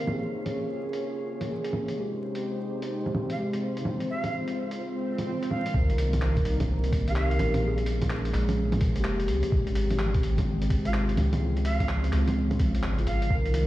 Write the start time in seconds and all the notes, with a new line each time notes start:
Already playing: A#3 F5
0.03 C#3 A#3 C#4 F4 G#4
0.07 G#4 C#5, low bongo
0.46 closed hi-hat, low bongo
0.93 closed hi-hat
1.41 closed hi-hat, low bongo
1.47 C#3 A#3 G#4
1.64 closed hi-hat
1.73 low bongo
1.88 C3, closed hi-hat
1.95 G#3 C4 D#4 G4 C5
2.00 G4
2.35 closed hi-hat
2.82 closed hi-hat
3.06 low bongo
3.15 low bongo
3.30 F5, closed hi-hat
3.36 C3 G#3 G4
3.53 closed hi-hat
3.77 closed hi-hat
3.81 C#3 F4
3.85 C4 F4, low bongo
4.00 closed hi-hat
4.10 F5
4.24 closed hi-hat, low bongo
4.48 closed hi-hat
4.71 closed hi-hat
4.80 swell
5.18 closed hi-hat, low bongo
5.25 C#3 C4
5.29 F4
5.43 closed hi-hat
5.51 F5, low bongo
5.66 D#3, closed hi-hat
5.73 C2 G3 A#3 C4 D#4 A#4, kick, sub drop
5.77 A#4
5.90 closed hi-hat
5.98 open hi-hat
6.13 closed hi-hat, low bongo
6.22 clap
6.37 kick, closed hi-hat
6.45 C2, open hi-hat
6.60 kick, closed hi-hat, low bongo
6.84 closed hi-hat
6.93 C2, kick, open hi-hat
7.03 D#3
7.08 C4 G4 F5, closed hi-hat
7.16 F5, clap
7.31 closed hi-hat
7.39 A#1, open hi-hat, low bongo
7.54 closed hi-hat, low bongo
7.59 C#3
7.63 F3 G#3 A#3 C#4 G#4
7.78 closed hi-hat
7.86 open hi-hat
8.02 kick, closed hi-hat, low bongo
8.10 clap
8.25 closed hi-hat
8.34 A#1, clap, open hi-hat
8.49 closed hi-hat, low bongo
8.72 closed hi-hat, low bongo
8.81 A#1, kick, open hi-hat
8.91 C#3
8.96 F1 A#3, closed hi-hat
9.00 G4
9.04 clap
9.20 closed hi-hat
9.28 C#2, open hi-hat
9.43 closed hi-hat
9.48 C3
9.52 G#1 D#3 G#3 C4 G4, kick
9.56 G4
9.67 closed hi-hat
9.75 open hi-hat
9.90 closed hi-hat, low bongo
9.99 clap
10.14 kick, closed hi-hat
10.23 G#1, open hi-hat
10.38 kick, closed hi-hat, low bongo
10.62 closed hi-hat
10.70 G#1, kick, open hi-hat
10.81 C3 G#3 F5, closed hi-hat
10.89 F4
10.94 clap
11.09 closed hi-hat
11.17 C#2, open hi-hat, low bongo
11.33 closed hi-hat, low bongo
11.37 C#3 F3 C4 F4
11.41 C4
11.46 F4
11.57 closed hi-hat
11.65 F5, open hi-hat
11.80 kick, closed hi-hat, low bongo
11.89 clap
12.04 closed hi-hat
12.12 C#2, clap, open hi-hat
12.28 closed hi-hat, low bongo
12.51 closed hi-hat, low bongo
12.59 C#2, kick, open hi-hat
12.74 G#1, closed hi-hat
12.83 G#1, clap
12.96 G#1 C#3 C4 F4, closed hi-hat
13.07 G#1 F5, open hi-hat
13.22 closed hi-hat
13.26 D#3 C4
13.30 C2 C3 D#3 G3 A#3 D#4, kick
13.34 A#4
13.46 closed hi-hat
13.54 open hi-hat